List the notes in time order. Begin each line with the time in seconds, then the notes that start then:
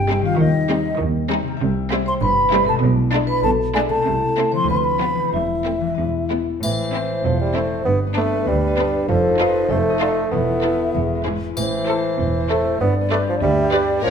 Already playing: G1 G2 C3 G3 G4 C5 G5
0.09 G3 C4 D#4
0.22 D#3 F5
0.26 G3 F4
0.30 G4
0.35 D#3 C5
0.40 D#2 D#4 D#5
0.69 G3 C4 D#4
1.00 D#2 D#3
1.30 G3 C4 D#4
1.43 C3
1.48 G3
1.52 G4
1.57 E5
1.61 C2 C3
1.92 G3 C4 E4
2.06 C5 C6
2.22 G1 G2 B4 B5
2.52 G3 C4 E4
2.65 B2 A4
2.69 G#3 A5
2.74 E4
2.78 D5
2.83 B1 B2
3.13 G#3 D4 E4
3.27 B4 B5
3.43 B1 B2 A4 A5
3.74 G#3 D4 E4 G#4 G#5
3.89 C3 A4 A5
3.93 A3
3.98 E4
4.02 C2 C5
4.06 C3
4.38 A3 C4 E4
4.51 D3 C5
4.56 F3 C6
4.61 F4
4.65 B4
4.70 D2 B5
4.77 C6
4.84 B5
5.01 F3 B3 F4
5.15 E3
5.20 A3
5.24 E4
5.29 C5
5.33 E1 E2 E4 E5
5.65 A3 C4 E4
5.81 E3
5.85 G#3
5.90 E4
5.94 E1 B4
5.99 E2
6.30 G#3 B3 E4
6.62 A1 A2 E3 E4 C5 E5, triangle
6.84 A3
6.93 C4 E4 C5
7.04 C5
7.25 E1 E2 F3 A4
7.41 G3
7.46 C5
7.55 A3 C4 E4
7.66 C4
7.85 G1 G2 B3 D4 B4
8.07 B3
8.16 A3 B3 D4 B4
8.26 B4
8.47 D2 G3 D4
8.67 B4
8.78 B3 D4 B4
8.88 D4
9.08 F1 F2 F3 D#4 A4
9.28 A3
9.39 D#4 F4 A4 B4
9.49 D#5
9.69 F1 F2 A3 A4 C5
9.90 D#5
10.00 D#4 F4 A4 D5
10.11 D#4
10.31 E1 E2 B3 E4 E5
10.53 A3
10.63 E4 A4 B4
10.73 E4 B4
10.94 E1 E2 G#4
11.15 G#3
11.25 G#2 E4 G#4 B4
11.35 E4 B4
11.56 A1 A2 E3 E4 C5, triangle
11.77 A3
11.87 E4 A4 C5
11.98 C5
12.18 E1 E2 A4 C5
12.40 C5
12.50 A3 E4 A4 C5
12.60 C4
12.79 G1 G2 B3 D4 B4 D5
13.01 B3
13.11 A3 G4 B4 D5
13.22 G4
13.29 F3
13.42 D2 G3 B4 E5
13.63 G4
13.73 G4 B4 D5
13.83 D4
14.02 A#1 A#2 F3 C#4 G4 A#4 C#5